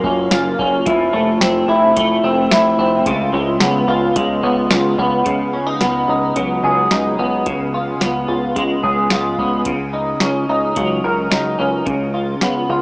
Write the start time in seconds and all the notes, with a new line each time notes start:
Already playing: F#3 A#3 F4
0.04 F#1 C#4, kick
0.31 F#1 F4, snare, closed hi-hat, tambourine
0.59 F#1 C#4, kick
0.86 F1 F3 E4, kick, closed hi-hat
1.13 F1 A3
1.41 F1 C4, snare, closed hi-hat, tambourine
1.68 F1 E4
1.96 F1 A3, kick, closed hi-hat
2.24 F1 C4
2.51 F1 E4, snare, closed hi-hat, tambourine
2.78 F1 C4
3.06 C#2 C#3 F4, kick, closed hi-hat
3.33 C#2 G#3
3.60 C#2 B3, snare, closed hi-hat, tambourine
3.88 C#2 F4
4.16 C#2 G#3, kick, closed hi-hat
4.43 C#2 B3
4.70 C#2 F4, snare, closed hi-hat, tambourine
4.98 C#2 B3, kick
5.25 C#2 C#3, kick, closed hi-hat
5.53 C#4
5.67 D#4
5.81 C#2 B3, snare, closed hi-hat
6.08 C#2 D#4
6.36 C#2 F#3, kick, closed hi-hat
6.63 C#2 G#4
6.91 C#2 D#4, snare, closed hi-hat
7.19 C#2 B3
7.46 C#2 C#3, kick, closed hi-hat
7.74 F4
8.01 C#2 B3, snare, closed hi-hat
8.28 C#2 F4
8.56 C#2 G#3, kick, closed hi-hat
8.83 C#2 G#4, kick
9.10 C#2 F4, snare, closed hi-hat
9.39 C#2 B3, kick
9.65 C#2 C#3, kick, closed hi-hat
9.93 D#4
10.20 C#2 C#4, snare, closed hi-hat
10.49 C#2 D#4
10.76 C#2 F#3, kick, closed hi-hat
11.04 C#2 A#4
11.31 C#2 D#4, snare, closed hi-hat
11.59 C#2 C#4
11.86 C#2 C#3, kick, closed hi-hat
12.14 F4
12.41 C#2 B3, snare, closed hi-hat
12.70 C#2 F4